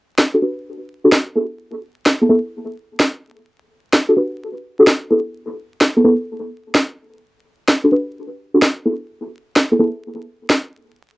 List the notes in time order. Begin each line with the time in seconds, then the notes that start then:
0.18 snare
0.34 D4 F#4 G4 A4
0.42 D4 F#4 G4 B4
1.04 D4 F#4 G4 A4
1.12 snare
1.36 B3 E4 G#4 A4
2.06 snare
2.21 B3 E4 G#4 A4
2.29 B3 E4 G#4 A4
3.00 snare
3.93 snare
4.09 D4 F#4 G4 A4
4.17 D4 F#4 G4 B4
4.79 D4 F#4 G4 A4
4.87 snare
5.11 B3 E4 G#4 A4
5.81 snare
5.96 B3 E4 G#4 A4
6.04 B3 E4 G#4 A4
6.75 snare
7.68 snare
7.84 D4 F#4 G4 A4
7.92 D4 F#4 G4 B4
8.54 D4 F#4 G4 A4
8.62 snare
8.86 B3 E4 G#4 A4
9.56 snare
9.71 B3 E4 G#4 A4
9.79 B3 E4 G#4 A4
10.50 snare